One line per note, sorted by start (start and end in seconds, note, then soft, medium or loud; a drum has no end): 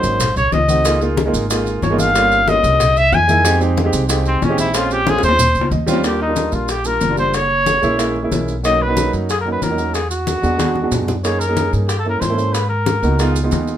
0.00 0.34 G#1 medium
0.00 0.20 F#3 medium
0.00 0.20 A#3 medium
0.00 0.21 C#4 medium
0.00 0.21 D#4 medium
0.00 0.37 C5 medium
0.00 maracas medium
0.04 high bongo soft
0.20 high bongo medium
0.20 high conga soft
0.20 low conga medium
0.20 maracas medium
0.36 0.52 C2 medium
0.36 0.54 C#5 loud
0.36 high bongo soft
0.36 high conga soft
0.36 low conga medium
0.36 maracas soft
0.52 1.28 C#2 medium
0.52 1.01 D#5 loud
0.52 high bongo soft
0.52 low bongo medium
0.52 high conga medium
0.52 maracas soft
0.68 0.80 A3 medium
0.68 0.80 C4 medium
0.68 0.80 D#4 medium
0.68 0.81 F#4 medium
0.68 high conga medium
0.68 maracas medium
0.85 0.96 G#3 medium
0.85 0.97 A#3 medium
0.85 0.97 D#4 medium
0.85 0.97 F4 medium
0.85 high bongo medium
0.85 high conga soft
0.85 maracas medium
1.00 1.18 G#3 medium
1.00 1.18 A#3 medium
1.00 1.19 D#4 medium
1.00 1.19 F4 medium
1.00 high bongo soft
1.00 high conga soft
1.00 maracas soft
1.17 high bongo medium
1.17 high conga loud
1.17 maracas soft
1.26 1.43 G#3 medium
1.26 1.43 A#3 medium
1.26 1.44 D#4 medium
1.26 1.44 F4 medium
1.34 1.79 G#1 medium
1.34 high bongo soft
1.34 high conga soft
1.34 maracas medium
1.50 1.79 G#3 medium
1.50 1.79 A#3 medium
1.50 1.79 D#4 medium
1.50 1.79 F4 medium
1.50 high bongo medium
1.50 high conga soft
1.50 maracas medium
1.66 high bongo soft
1.66 high conga soft
1.66 maracas soft
1.82 2.58 G1 medium
1.82 2.01 C#5 medium
1.82 high bongo soft
1.82 low bongo medium
1.82 high conga medium
1.82 maracas soft
1.90 2.08 G#3 medium
1.90 2.08 A#3 medium
1.90 2.08 D#4 medium
1.90 2.09 F4 medium
1.99 2.50 F5 loud
1.99 high conga medium
1.99 maracas medium
2.14 2.37 G3 medium
2.14 2.38 A#3 medium
2.14 2.38 C#4 medium
2.14 2.38 F4 medium
2.14 high bongo medium
2.14 high conga soft
2.14 maracas medium
2.31 high bongo soft
2.31 high conga soft
2.31 maracas soft
2.47 2.80 G3 medium
2.47 2.80 A#3 medium
2.47 2.80 C#4 medium
2.47 2.81 F4 medium
2.47 2.99 D#5 loud
2.47 high bongo medium
2.47 high conga loud
2.47 maracas soft
2.63 3.09 C2 loud
2.63 high bongo soft
2.63 maracas medium
2.80 high bongo medium
2.80 high conga soft
2.80 low conga medium
2.80 maracas medium
2.96 3.15 E5 loud
2.96 high bongo soft
2.96 high conga soft
2.96 maracas soft
3.12 3.88 F2 loud
3.12 3.62 G#5 loud
3.12 high bongo soft
3.12 low bongo medium
3.12 high conga medium
3.12 maracas soft
3.28 3.40 G#3 medium
3.28 3.40 A#3 medium
3.28 3.40 D#4 medium
3.28 3.41 E4 medium
3.28 high conga medium
3.28 maracas medium
3.44 3.56 G#3 medium
3.44 3.56 C4 medium
3.44 3.57 D#4 medium
3.44 3.57 G4 medium
3.44 high bongo medium
3.44 high conga soft
3.44 maracas medium
3.60 3.78 G#3 medium
3.60 3.78 C4 medium
3.60 3.78 D#4 medium
3.60 3.79 G4 medium
3.60 high bongo soft
3.60 high conga soft
3.60 maracas soft
3.77 high bongo medium
3.77 high conga loud
3.77 maracas soft
3.84 4.02 G#3 medium
3.84 4.02 C4 medium
3.84 4.03 D#4 medium
3.84 4.03 G4 loud
3.93 4.39 C2 loud
3.93 high bongo soft
3.93 high conga soft
3.93 maracas medium
4.08 4.37 G#3 medium
4.08 4.38 C4 medium
4.08 4.38 D#4 medium
4.08 4.38 G4 medium
4.08 high bongo medium
4.08 high conga soft
4.08 maracas medium
4.26 4.45 C4 medium
4.26 high bongo soft
4.26 high conga soft
4.26 maracas soft
4.42 5.18 A#1 medium
4.42 4.59 C#4 medium
4.42 high bongo soft
4.42 low bongo medium
4.42 high conga medium
4.42 maracas soft
4.49 4.67 G#3 medium
4.49 4.67 C4 medium
4.49 4.67 D#4 medium
4.49 4.68 G4 medium
4.58 4.78 E4 loud
4.58 high conga medium
4.58 maracas medium
4.73 4.97 G#3 medium
4.73 4.97 C4 medium
4.73 4.97 C#4 medium
4.73 4.98 F4 medium
4.73 4.94 F4 medium
4.73 high bongo medium
4.73 maracas loud
4.91 5.11 G4 loud
4.91 high bongo soft
4.91 high conga soft
4.91 maracas soft
5.05 5.39 G#3 medium
5.05 5.39 C4 medium
5.05 5.39 C#4 medium
5.05 5.40 F4 medium
5.05 5.23 G#4 medium
5.05 high bongo medium
5.05 high conga loud
5.05 maracas soft
5.18 high bongo medium
5.23 5.53 D#2 loud
5.23 5.69 C5 loud
5.23 maracas medium
5.29 low bongo medium
5.39 high conga soft
5.39 low conga medium
5.39 maracas medium
5.55 5.71 C#2 medium
5.55 high conga soft
5.55 maracas soft
5.61 low bongo loud
5.71 6.47 D#2 loud
5.71 5.87 D#5 medium
5.71 high conga medium
5.71 maracas soft
5.87 5.99 G3 loud
5.87 5.99 C4 loud
5.87 6.00 C#4 medium
5.87 6.00 F4 loud
5.87 6.03 G5 medium
5.87 high conga medium
5.87 maracas medium
5.93 low bongo medium
6.03 6.21 G3 medium
6.03 6.21 A#3 medium
6.03 6.21 D4 medium
6.03 6.22 F4 medium
6.03 6.21 G4 medium
6.03 high bongo medium
6.03 high conga soft
6.03 maracas medium
6.20 6.55 D#4 medium
6.20 high conga soft
6.27 6.68 G3 medium
6.27 6.68 A#3 medium
6.27 6.69 D4 medium
6.27 6.69 F4 medium
6.36 high bongo medium
6.36 high conga medium
6.36 maracas medium
6.52 6.98 A#1 medium
6.52 6.72 F4 medium
6.52 high bongo soft
6.52 high conga soft
6.52 maracas soft
6.68 6.88 G4 medium
6.68 high bongo medium
6.68 high conga soft
6.68 maracas medium
6.84 7.02 G3 medium
6.84 7.03 A#3 medium
6.84 7.03 D4 medium
6.84 7.03 F4 medium
6.84 7.18 A#4 loud
6.84 high bongo soft
6.84 high conga soft
6.84 maracas medium
7.01 7.77 F#1 medium
7.01 high bongo soft
7.01 low bongo medium
7.01 high conga medium
7.01 maracas medium
7.09 7.15 G3 medium
7.09 7.16 A#3 medium
7.09 7.16 D4 medium
7.09 7.16 F4 medium
7.16 7.34 G3 medium
7.16 7.34 A#3 medium
7.16 7.34 D4 medium
7.16 7.34 F4 medium
7.16 7.36 C5 medium
7.16 high bongo soft
7.16 maracas soft
7.34 8.32 C#5 loud
7.34 high bongo medium
7.34 high conga soft
7.34 maracas medium
7.50 high conga soft
7.66 high bongo medium
7.66 high conga medium
7.66 maracas medium
7.82 8.28 A#1 medium
7.82 7.94 G#3 medium
7.82 7.94 A#3 medium
7.82 7.94 C#4 medium
7.82 7.95 E4 loud
7.82 high bongo soft
7.82 high conga soft
7.82 maracas soft
7.97 8.16 G#3 medium
7.97 8.16 A#3 medium
7.97 8.16 C#4 medium
7.97 8.17 E4 loud
7.97 high bongo medium
7.97 high conga soft
7.97 maracas medium
8.16 high bongo soft
8.16 high conga soft
8.23 8.52 G#3 medium
8.23 8.52 A#3 medium
8.23 8.52 C#4 medium
8.23 8.53 E4 medium
8.32 9.07 B1 medium
8.32 high bongo soft
8.32 low bongo medium
8.32 high conga medium
8.32 maracas medium
8.48 high bongo soft
8.48 maracas soft
8.63 8.81 F#3 medium
8.63 8.81 A#3 medium
8.63 8.82 C#4 medium
8.63 8.82 D#4 medium
8.63 8.83 D#5 loud
8.63 high bongo medium
8.63 high conga soft
8.63 maracas medium
8.81 9.14 B4 loud
8.81 high conga soft
8.88 9.28 F#3 medium
8.88 9.29 A#3 medium
8.88 9.29 C#4 medium
8.88 9.29 D#4 medium
8.97 high bongo medium
8.97 high conga loud
8.97 maracas medium
9.13 9.59 F#2 medium
9.13 high bongo soft
9.13 high conga soft
9.13 maracas soft
9.29 9.40 G#4 medium
9.29 high bongo medium
9.29 high conga soft
9.29 maracas medium
9.41 9.51 A#4 medium
9.45 9.62 F#3 medium
9.45 9.63 A#3 medium
9.45 9.63 C#4 medium
9.45 9.64 D#4 medium
9.45 high bongo soft
9.45 high conga soft
9.52 9.64 B4 medium
9.62 10.37 E2 medium
9.62 9.96 A#4 medium
9.62 high bongo soft
9.62 low bongo medium
9.62 high conga medium
9.62 maracas medium
9.69 9.75 F#3 medium
9.69 9.76 A#3 medium
9.69 9.76 C#4 medium
9.69 9.76 D#4 medium
9.77 9.94 F#3 medium
9.77 9.94 A#3 medium
9.77 9.95 C#4 medium
9.77 9.95 D#4 medium
9.77 high bongo soft
9.77 maracas soft
9.94 10.10 G#4 medium
9.94 high bongo medium
9.94 high conga soft
9.94 maracas medium
10.11 11.04 F#4 loud
10.11 high conga soft
10.11 maracas medium
10.27 high bongo medium
10.27 high conga loud
10.27 maracas medium
10.42 10.88 E2 medium
10.42 10.54 G#3 medium
10.42 10.54 B3 medium
10.42 10.55 D4 medium
10.42 10.55 F#4 medium
10.42 high bongo soft
10.42 high conga soft
10.42 maracas soft
10.57 10.75 G#3 medium
10.57 10.76 B3 medium
10.57 10.76 D4 medium
10.57 10.76 F#4 medium
10.57 high bongo medium
10.57 high conga medium
10.57 maracas medium
10.75 high bongo soft
10.75 high conga medium
10.82 11.11 G#3 medium
10.82 11.12 B3 medium
10.82 11.12 D4 medium
10.82 11.12 F#4 medium
10.91 11.67 F#2 medium
10.91 high bongo soft
10.91 low bongo medium
10.91 low conga medium
10.91 maracas medium
11.08 high bongo soft
11.08 low conga medium
11.08 maracas soft
11.23 11.41 A#3 medium
11.23 11.41 C#4 medium
11.23 11.42 D#4 medium
11.23 11.42 G#4 medium
11.23 11.41 C#5 medium
11.23 high bongo medium
11.23 high conga soft
11.23 maracas medium
11.40 11.73 A#4 medium
11.40 high conga soft
11.40 maracas medium
11.48 11.88 A#3 medium
11.48 11.88 C#4 medium
11.48 11.89 D#4 medium
11.48 11.89 G#4 medium
11.57 high bongo medium
11.57 high conga loud
11.57 maracas medium
11.73 12.18 G2 medium
11.73 high bongo soft
11.73 high conga soft
11.73 maracas soft
11.88 11.99 G4 medium
11.88 high bongo medium
11.88 high conga soft
11.88 maracas medium
11.99 12.09 A4 medium
12.05 12.22 A#3 medium
12.05 12.22 C#4 medium
12.05 12.23 E4 medium
12.05 12.23 A4 medium
12.05 high bongo soft
12.05 high conga soft
12.10 12.22 A#4 medium
12.20 12.97 G#2 medium
12.20 12.55 C5 medium
12.20 high bongo soft
12.20 low bongo medium
12.20 high conga medium
12.20 maracas medium
12.29 12.35 A#3 medium
12.29 12.35 C#4 medium
12.29 12.36 E4 medium
12.29 12.36 A4 medium
12.37 12.54 A#3 medium
12.37 12.54 C#4 medium
12.37 12.54 E4 medium
12.37 12.55 A4 medium
12.37 high bongo soft
12.37 maracas soft
12.53 12.69 B4 medium
12.53 high bongo medium
12.53 high conga soft
12.53 maracas medium
12.69 13.36 A#4 medium
12.69 high conga soft
12.86 high bongo medium
12.86 high conga loud
12.86 maracas medium
13.02 13.48 C#2 medium
13.02 13.14 A#3 medium
13.02 13.14 B3 medium
13.02 13.15 D#4 medium
13.02 13.15 F#4 medium
13.02 high bongo soft
13.02 high conga soft
13.02 maracas soft
13.19 13.36 G#3 medium
13.19 13.37 B3 medium
13.19 13.37 D#4 medium
13.19 13.37 F4 loud
13.19 high bongo medium
13.19 high conga soft
13.19 maracas medium
13.35 high bongo soft
13.35 high conga soft
13.35 maracas medium
13.43 13.72 G#3 medium
13.43 13.72 B3 medium
13.43 13.72 D#4 medium
13.43 13.73 F4 medium
13.51 13.78 D#2 medium
13.51 high bongo soft
13.51 low bongo medium
13.51 high conga medium
13.51 maracas medium
13.68 high bongo soft
13.68 maracas soft